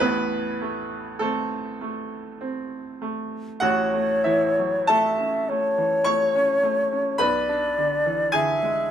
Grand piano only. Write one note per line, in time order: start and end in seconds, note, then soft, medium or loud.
0.00 3.58 A1 medium
0.00 3.58 A2 medium
0.00 1.17 B3 medium
0.00 1.21 B4 loud
0.61 1.19 A3 medium
1.19 1.80 A3 medium
1.19 2.17 C4 medium
1.19 3.00 A4 medium
1.81 2.77 A3 medium
2.41 3.38 C4 medium
3.02 3.62 A3 medium
3.60 7.16 A1 medium
3.60 7.16 A2 medium
3.60 4.21 F#4 medium
3.60 4.25 F#5 loud
3.94 4.46 A3 soft
4.24 4.77 E3 medium
4.24 4.85 E4 medium
4.24 4.89 E5 medium
4.59 4.90 F#3 soft
4.87 5.37 A3 medium
4.87 6.02 A4 medium
4.87 6.05 A5 loud
5.19 5.66 C#4 soft
5.49 5.95 A3 soft
5.78 6.23 E3 soft
6.04 6.52 A3 soft
6.04 7.16 C#5 medium
6.04 7.19 C#6 loud
6.35 6.81 C#4 medium
6.63 7.09 A3 medium
6.92 7.20 C#4 soft
7.18 8.91 B1 medium
7.18 8.30 B4 medium
7.18 8.33 B5 loud
7.49 7.95 D4 medium
7.78 8.23 D3 soft
8.06 8.35 E3 soft
8.32 8.80 D3 medium
8.32 8.91 G#4 medium
8.32 8.91 G#5 loud
8.63 8.91 G#3 soft